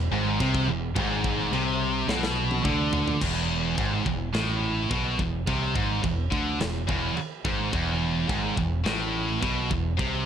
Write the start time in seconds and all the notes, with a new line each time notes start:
Already playing: E1
0.11 G#1 G#2
0.39 C2 C3, kick, china
0.55 kick
0.68 E1 E2
0.96 G#1 G#2, kick, china
1.24 kick
1.51 C2 C3, china
2.08 B1 B2, snare
2.23 snare
2.51 high tom
2.65 D2 D3, kick, mid tom
2.93 floor tom
3.08 floor tom
3.21 E1 E2, kick, crash, china
3.77 G#1 G#2, kick, china
4.06 E1 E2, kick
4.33 A1 A2, snare, china
4.91 B1 B2, kick, china
5.19 E1 E2, kick
5.47 C2 C3, kick, china
5.75 G#1 G#2, kick
6.03 E1 E2, kick, china
6.31 D2 D3, kick
6.59 E1 E2, snare, china
6.88 E1 E2, kick
7.16 muted fingered electric bass stroke, muted distorted electric guitar stroke, china
7.45 G#1 G#2, kick
7.72 E1 E2, kick, china
8.28 G#1 G#2, kick, china
8.56 E1 E2, kick
8.84 A1 A2, snare, china
9.41 B1 B2, kick, china
9.69 E1 E2, kick
9.97 C2 C3, kick, china